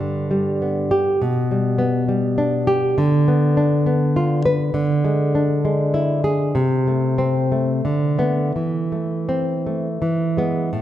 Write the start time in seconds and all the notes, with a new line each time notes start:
Already playing: G2 G3
0.00 D3
0.31 G3
0.62 B3
0.91 G4
1.22 B2
1.51 G3
1.78 B3
2.08 G3
2.38 D4
2.67 G4
2.98 D3
3.28 B3
3.57 D4
3.86 B3
4.16 F4
4.46 B4
4.74 D3
5.04 G#3
5.35 D4
5.65 G#3
5.94 E4
6.24 G#4
6.55 C3
6.87 A3
7.18 C4
7.52 A3
7.85 D3
8.18 A3 B3
8.56 E3
8.92 A3
9.29 C4
9.66 A3
10.02 E3
10.37 G#3 B3
10.73 A2